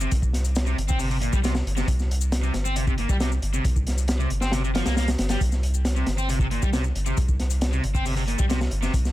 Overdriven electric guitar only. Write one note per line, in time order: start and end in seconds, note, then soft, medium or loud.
0.01 0.10 C3 loud
0.67 0.76 C3 medium
0.89 0.98 C4 loud
1.00 1.09 C3 medium
1.11 1.17 C3 loud
1.22 1.33 A#2 medium
1.33 1.39 G3 loud
1.44 1.53 C3 medium
1.77 1.86 C3 loud
2.43 2.53 C3 medium
2.65 2.75 C4 loud
2.76 2.86 C3 medium
2.87 2.93 C3 loud
2.99 3.09 A#2 medium
3.10 3.15 G3 loud
3.21 3.30 C3 medium
3.54 3.63 C3 medium
4.20 4.29 C3 medium
4.42 4.51 C4 loud
4.53 4.62 C3 medium
4.64 4.70 C3 loud
4.75 4.85 F3 medium
4.86 4.96 A#3 loud
4.97 5.08 A#3 medium
5.30 5.39 G3 medium
5.96 6.06 C3 medium
6.18 6.28 C4 loud
6.29 6.39 C3 medium
6.40 6.46 C3 loud
6.51 6.62 A#2 medium
6.62 6.68 G3 loud
6.73 6.83 C3 medium
7.06 7.16 C3 loud
7.72 7.82 C3 medium
7.95 8.04 C4 loud
8.06 8.15 C3 medium
8.16 8.22 C3 loud
8.28 8.38 A#2 medium
8.38 8.44 G3 loud
8.49 8.59 C3 medium
8.83 8.92 C3 loud